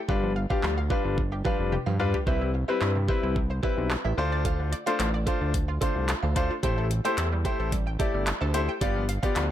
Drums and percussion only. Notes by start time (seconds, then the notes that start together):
0.09 kick
0.50 kick
0.63 clap
0.90 kick
1.18 kick
1.45 kick
1.72 high tom
2.00 mid tom
2.14 floor tom
2.27 kick
2.81 clap
3.09 kick
3.36 kick
3.63 kick
3.91 clap
4.45 kick, closed hi-hat
4.73 closed hi-hat
4.87 closed hi-hat
5.00 clap, closed hi-hat
5.27 kick, closed hi-hat
5.54 kick, closed hi-hat
5.82 kick, closed hi-hat
6.09 clap, closed hi-hat
6.36 kick, closed hi-hat
6.63 kick, closed hi-hat
6.91 closed hi-hat
7.05 closed hi-hat
7.18 clap, closed hi-hat
7.45 kick, closed hi-hat
7.72 kick, closed hi-hat
8.00 kick, closed hi-hat
8.27 clap, closed hi-hat
8.54 closed hi-hat
8.81 kick, closed hi-hat
9.09 closed hi-hat
9.23 kick, closed hi-hat
9.36 clap, closed hi-hat